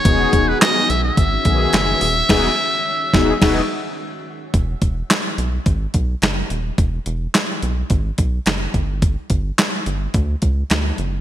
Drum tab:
CC |--------|x---x---|--------|--------|
HH |xxxxxxxo|--------|xxxxxxxx|xxxxxxxx|
CP |--x---x-|--------|--x---x-|--x---x-|
SD |--o---o-|o--oo---|--o---o-|--o---o-|
BD |oo--oo--|o--oo---|oo--oo--|o---oo-o|

CC |--------|
HH |xxxxxxxx|
CP |--x---x-|
SD |--o---o-|
BD |oo--oo--|